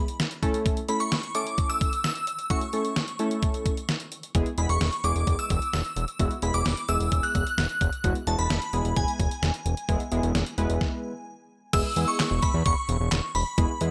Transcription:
Already playing: synth bell B5
0.08 closed hi-hat
0.20 snare, closed hi-hat
0.31 closed hi-hat
0.43 synth keys A3 C#4 E4 A4, kick, closed hi-hat
0.54 closed hi-hat
0.66 kick, closed hi-hat
0.77 closed hi-hat
0.88 synth keys A3 C#4 E4 A4, synth bell B5, closed hi-hat
1.00 synth bell C#6, closed hi-hat
1.12 snare, closed hi-hat
1.23 closed hi-hat
1.35 synth keys A3 C#4 E4 A4, synth bell D6, closed hi-hat
1.47 closed hi-hat
1.58 kick, closed hi-hat
1.70 synth bell E6, closed hi-hat
1.81 kick, closed hi-hat
1.93 closed hi-hat
2.04 synth bell E6, snare, closed hi-hat
2.16 closed hi-hat
2.27 closed hi-hat
2.39 closed hi-hat
2.50 synth keys A3 C#4 E4 F#4, synth bell C#6, kick, closed hi-hat
2.61 closed hi-hat
2.73 synth keys A3 C#4 E4 A4, closed hi-hat
2.85 closed hi-hat
2.96 snare, closed hi-hat
3.08 closed hi-hat
3.19 synth keys A3 C#4 E4 A4, closed hi-hat
3.31 closed hi-hat
3.42 kick, closed hi-hat
3.54 closed hi-hat
3.66 kick, closed hi-hat
3.77 closed hi-hat
3.89 snare, closed hi-hat
4.00 closed hi-hat
4.12 closed hi-hat
4.23 closed hi-hat
4.35 analog synth bass E1, synth keys G#3 B3 E4 G#4, kick, closed hi-hat
4.46 closed hi-hat
4.58 analog synth bass E1, synth keys G#3 B3 E4 G#4, synth bell B5, closed hi-hat
4.69 analog synth bass E1, synth bell C#6, closed hi-hat
4.81 analog synth bass E1, snare, closed hi-hat
4.93 closed hi-hat
5.04 analog synth bass E1, synth keys G#3 B3 E4 G#4, synth bell D6, closed hi-hat
5.16 analog synth bass E1, closed hi-hat
5.27 analog synth bass E1, kick, closed hi-hat
5.39 synth bell E6, closed hi-hat
5.50 analog synth bass E1, kick, closed hi-hat
5.62 closed hi-hat
5.73 analog synth bass E1, synth bell E6, snare, closed hi-hat
5.85 closed hi-hat
5.96 analog synth bass E1, closed hi-hat
6.08 closed hi-hat
6.19 analog synth bass E1, synth keys G#3 B3 E4 F#4, kick, closed hi-hat
6.31 closed hi-hat
6.42 analog synth bass E1, synth keys G#3 B3 E4 G#4, synth bell B5, closed hi-hat
6.54 analog synth bass E1, synth bell D6, closed hi-hat
6.66 analog synth bass E1, snare, closed hi-hat
6.77 closed hi-hat
6.88 analog synth bass E1, synth keys G#3 B3 E4 G#4, synth bell E6, closed hi-hat
7.00 analog synth bass E1, closed hi-hat
7.12 analog synth bass E1, kick, closed hi-hat
7.23 synth bell F#6, closed hi-hat
7.35 analog synth bass E1, kick, closed hi-hat
7.47 closed hi-hat
7.58 analog synth bass E1, synth bell F#6, snare, closed hi-hat
7.69 closed hi-hat
7.81 analog synth bass E1, kick, closed hi-hat
7.93 closed hi-hat
8.04 analog synth bass E1, synth keys G#3 B3 E4 F#4, kick, closed hi-hat
8.15 closed hi-hat
8.27 analog synth bass E1, synth keys G#3 B3 E4 F#4, synth bell A5, closed hi-hat
8.39 analog synth bass E1, synth bell B5, closed hi-hat
8.50 analog synth bass E1, snare, closed hi-hat
8.62 closed hi-hat
8.73 analog synth bass E1, synth keys G#3 B3 E4 G#4, closed hi-hat
8.85 analog synth bass E1, closed hi-hat
8.96 analog synth bass E1, synth bell G#5, kick, closed hi-hat
9.08 closed hi-hat
9.20 analog synth bass E1, kick, closed hi-hat
9.31 closed hi-hat
9.42 analog synth bass E1, snare, closed hi-hat
9.54 closed hi-hat
9.66 analog synth bass E1, closed hi-hat
9.77 closed hi-hat
9.89 analog synth bass E1, synth keys G#3 B3 E4 G#4, kick, closed hi-hat
10.00 closed hi-hat
10.12 analog synth bass E1, synth keys G#3 B3 E4 G#4, closed hi-hat
10.23 analog synth bass E1, closed hi-hat
10.35 analog synth bass E1, snare, closed hi-hat
10.46 closed hi-hat
10.58 analog synth bass E1, synth keys G#3 B3 E4 B4, closed hi-hat
10.69 analog synth bass E1, closed hi-hat
10.81 kick, snare
11.73 analog synth bass E1, synth keys G#3 B3 E4 G#4, synth bell E6, kick, closed hi-hat, crash
11.96 analog synth bass E2, synth keys G#3 B3 E4 G#4, closed hi-hat
12.08 synth bell C#6
12.20 snare, clap, closed hi-hat
12.31 analog synth bass E1
12.42 synth bell B5, kick, closed hi-hat
12.54 analog synth bass E2
12.66 analog synth bass E1, synth bell C#6, kick, closed hi-hat
12.89 analog synth bass E1, closed hi-hat
13.00 analog synth bass E1
13.12 analog synth bass E1, snare, clap, closed hi-hat
13.35 analog synth bass E1, synth bell B5, open hi-hat
13.58 analog synth bass E1, synth keys G#3 B3 E4 G#4, kick, closed hi-hat
13.81 analog synth bass E2, synth keys G#3 B3 E4 G#4, closed hi-hat

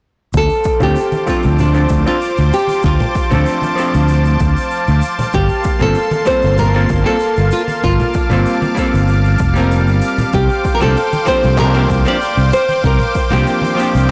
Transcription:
0.33 fretless electric bass D2, analog synth pad C5 F5 A5 D6, kick, shaker
0.37 nylon-string guitar A4
0.50 shaker
0.64 kick, shaker
0.80 fretless electric bass D2, hollow-body jazz guitar F3 A3 C4 D4 A4, nylon-string guitar G4, low conga, shaker
0.96 shaker
1.12 high conga, shaker
1.26 hollow-body jazz guitar F3 A3 C4 D4 A4, nylon-string guitar F4, kick, shaker
1.43 fretless electric bass D2, shaker
1.58 nylon-string guitar D4, low conga, shaker
1.73 hollow-body jazz guitar F3 A3 C4 D4 A4, shaker
1.89 fretless electric bass D2, kick, shaker
2.05 hollow-body jazz guitar F3 A3 C4 D4 A4, nylon-string guitar F4, shaker
2.22 shaker
2.37 fretless electric bass D2, shaker
2.53 nylon-string guitar G4, shaker
2.67 high conga, shaker
2.83 fretless electric bass D2, nylon-string guitar F4, kick, shaker
2.99 low conga, shaker
3.15 kick, shaker
3.30 fretless electric bass D2, hollow-body jazz guitar F3 A3 C4 D4 A4, low conga, shaker
3.46 shaker
3.62 high conga, shaker
3.75 hollow-body jazz guitar F3 A3 C4 D4, shaker
3.79 hollow-body jazz guitar A4
3.94 fretless electric bass D2, shaker
4.08 shaker
4.25 shaker
4.40 fretless electric bass D2, kick, shaker
4.57 shaker
4.71 shaker
4.88 fretless electric bass D2, shaker
5.02 shaker
5.19 high conga, low conga, shaker
5.32 fretless electric bass G1, analog synth pad A#3 C6, nylon-string guitar G4, kick, shaker
5.49 shaker
5.64 kick, shaker
5.79 fretless electric bass G1, hollow-body jazz guitar G3 A#3 C4 F4 A4, nylon-string guitar A4, low conga, shaker
5.95 shaker
6.11 high conga, shaker
6.25 hollow-body jazz guitar G3 A#3 C4 F4 A4, nylon-string guitar C5, kick, shaker
6.42 fretless electric bass G1, shaker
6.58 nylon-string guitar A#4, low conga, shaker
6.74 hollow-body jazz guitar G3 A#3 C4 F4 A4, shaker
6.89 fretless electric bass G1, kick, shaker
7.04 hollow-body jazz guitar G3 A#3 C4 F4 A4, nylon-string guitar A4, shaker
7.20 shaker
7.37 fretless electric bass G1, shaker
7.51 nylon-string guitar F4, shaker
7.68 high conga, shaker
7.84 fretless electric bass G1, nylon-string guitar F4, analog synth pad D6, kick, shaker
7.99 low conga, shaker
8.14 kick, shaker
8.30 fretless electric bass G1, hollow-body jazz guitar G3 A#3 C4 F4 A4, low conga, shaker
8.46 shaker
8.62 high conga, shaker
8.75 hollow-body jazz guitar G3 A#3 C4 F4, kick, shaker
8.79 hollow-body jazz guitar A4
8.94 fretless electric bass G1, shaker
9.08 shaker
9.24 shaker
9.38 fretless electric bass F1, kick, shaker
9.54 hollow-body jazz guitar G3 A#3 C4 F4, shaker
9.59 hollow-body jazz guitar A#4
9.71 shaker
9.87 fretless electric bass G1, shaker
10.01 shaker
10.18 high conga, low conga, shaker
10.33 fretless electric bass C2, nylon-string guitar G4, analog synth pad C5 G5, kick, shaker
10.49 shaker
10.65 kick, shaker
10.75 nylon-string guitar A#4
10.79 fretless electric bass C2, hollow-body jazz guitar F3 A#3 C4 D4 G4, nylon-string guitar A4, low conga, shaker
10.96 shaker
11.12 high conga, shaker
11.25 hollow-body jazz guitar F3 A#3 C4 D4 G4, nylon-string guitar C5, kick, shaker
11.44 fretless electric bass C2, shaker
11.58 nylon-string guitar A#4, clap, low conga, shaker
11.74 hollow-body jazz guitar F3 A#3 C4 D4 G4, shaker
11.90 fretless electric bass C2, kick, shaker
12.05 hollow-body jazz guitar F3 A#3 C4 D4 G4, nylon-string guitar D5, shaker
12.22 shaker
12.37 fretless electric bass C2, shaker
12.53 nylon-string guitar C5, shaker
12.69 high conga, shaker
12.84 fretless electric bass C2, nylon-string guitar A#4, kick, shaker
13.00 low conga, shaker
13.15 kick, shaker
13.30 fretless electric bass C2, hollow-body jazz guitar F3 A#3 C4 D4 G4, low conga, shaker
13.46 shaker
13.62 high conga, shaker
13.75 hollow-body jazz guitar F3 A#3 C4 D4
13.79 hollow-body jazz guitar G4, shaker
13.95 fretless electric bass C2, shaker

